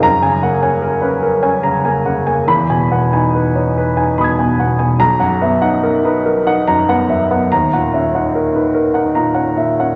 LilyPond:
<<
  \new Staff \with { instrumentName = "Grand piano" } { \time 6/8 \key b \major \tempo 4. = 48 << { ais''8 r2 r8 | b''8 r4. <dis''' gis'''>4 | ais''8 r2 r8 | ais''8 r2 r8 | } \\ { r16 gis''16 fis''16 gis''16 ais'16 b'16 ais'16 gis''16 ais''16 gis''16 fis''16 gis''16 | r16 gis''16 fis''16 gis''16 b'16 cis''16 b'16 gis''16 b''16 gis''16 fis''16 gis''16 | r16 fis''16 e''16 fis''16 ais'16 b'16 ais'16 fis''16 ais''16 fis''16 e''16 fis''16 | r16 fis''16 e''16 fis''16 ais'16 b'16 ais'16 fis''16 ais''16 fis''16 e''16 fis''16 | } >> }
  \new Staff \with { instrumentName = "Grand piano" } { \time 6/8 \key b \major fis,16 cis16 ais16 cis'8 cis'8 cis'16 cis16 ais16 cis16 ais16 | e,16 b,16 b16 dis'8 dis'8 dis'16 b,16 b16 b,16 b16 | b,,16 fis,16 b16 dis'8 dis'8 dis'16 fis,16 b16 fis,16 b16 | dis,16 ais,16 cis'16 dis'8 dis'8 dis'16 ais,16 cis'16 ais,16 cis'16 | }
>>